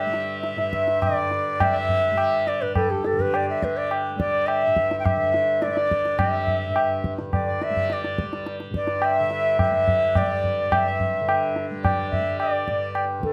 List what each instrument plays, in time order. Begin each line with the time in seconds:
Already playing: tanpura G2 D3 G3, bansuri E5
0.00 harmonium E5
0.06 tanpura G3
0.14 tabla te
0.43 bansuri E5, tabla te
0.56 tanpura G2, harmonium E5, tabla te
0.73 tabla ke
0.88 tabla te
1.02 bansuri D5, tabla na, tabla ge
1.08 tanpura D3
1.15 harmonium D5
1.31 tabla te
1.59 tanpura G3, bansuri E5, tabla na, tabla ge
1.73 harmonium E5
1.89 tabla ge
2.11 tanpura G3
2.18 tabla na
2.47 bansuri D5, tabla te
2.60 tanpura G2, bansuri B4, harmonium D5
2.74 bansuri A4, harmonium B4, tabla na, tabla ge
2.89 bansuri G4, harmonium A4
3.04 harmonium G4, bansuri A4, tabla te
3.13 tanpura D3
3.19 bansuri B4, tabla ge
3.34 bansuri D5, tabla na
3.47 harmonium D5, bansuri E5
3.61 tanpura G3, bansuri B4, harmonium E5, tabla ke
3.76 bansuri D5
3.91 tabla na
4.16 tanpura G3, bansuri D5
4.20 tabla ke
4.32 harmonium D5
4.46 bansuri E5, tabla na
4.63 harmonium E5
4.67 tanpura G2
4.77 tabla ke
4.91 tabla te
4.99 bansuri G5
5.05 bansuri E5, tabla na, tabla ge
5.17 tanpura D3, harmonium E5
5.34 tabla te
5.62 bansuri D5, tabla te
5.67 tanpura G3, harmonium E5
5.75 harmonium D5, tabla te
5.91 tabla ke
6.05 tabla te
6.18 tanpura G3, bansuri E5, tabla na, tabla ge
6.32 harmonium E5
6.47 tabla ge
6.68 tanpura G2
6.76 tabla na
7.04 tabla ke
7.19 tanpura D3, tabla te
7.32 bansuri D5, tabla na, tabla ge
7.47 harmonium D5
7.61 bansuri E5, tabla te
7.70 tanpura G3
7.76 tabla ge
7.90 bansuri D5, tabla te
8.03 harmonium D5, tabla te
8.18 tanpura G3, tabla ke
8.33 tabla te
8.46 tabla te
8.60 tabla te
8.70 tanpura G2, tabla ke
8.75 bansuri D5
8.87 harmonium D5, tabla te
9.02 bansuri E5, tabla na
9.11 harmonium G5
9.16 harmonium E5
9.20 tanpura D3
9.30 tabla te
9.59 bansuri E5, tabla na, tabla ge
9.70 tanpura G3, harmonium E5
9.88 tabla ge
10.15 bansuri D5, tabla na, tabla ge
10.21 tanpura G3
10.28 harmonium D5
10.44 tabla ge
10.71 tanpura G2, bansuri E5, tabla na, tabla ge
10.86 harmonium E5
11.00 tabla ge
11.21 tanpura D3
11.29 tabla na
11.56 tabla te
11.71 tanpura G3
11.83 bansuri D5, tabla na, tabla ge
11.97 harmonium D5
12.10 bansuri E5, tabla ge
12.19 tanpura G3
12.40 bansuri D5, tabla na
12.52 harmonium D5
12.68 tanpura G2, tabla ke
12.95 tabla na
13.20 tanpura D3, bansuri A4, tabla ke